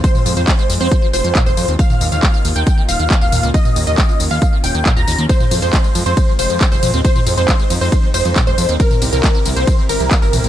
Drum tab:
RD |----------------|----------------|----------------|x-x-x-x-x-x-x-x-|
HH |x-oxx-oox-oxx-ox|x-oxx-oxx-oxx-ox|x-oxx-oox-oxx-ox|x-oxx-oxx-oxx-ox|
TB |xxxxxxxxx-xxxxxx|xxxxxxxxx-xxxxxx|xxxxxxxxx-xxxxxx|xxxxxxxxx-xxxxxx|
CP |----x-------x---|----x-------x---|----x-------x---|----x-------x---|
T2 |-o----------o---|-o------------o-|-o----------o---|-o------------o-|
BD |o---o---o---o---|o---o---o---o---|o---o---o---o---|o---o---o---o---|

RD |x-x-x-x-x-x-x-x-|x-x-x-x-x-x-x-x-|
HH |x-oxx-oox-oxx-ox|x-oxx-oxx-oxx-ox|
TB |xxxxxxxxx-xxxxxx|xxxxxxxxx-xxxxxx|
CP |----x-------x---|----x-------x---|
T2 |-o----------o---|-o------------o-|
BD |o---o---o---o---|o---o---o---o---|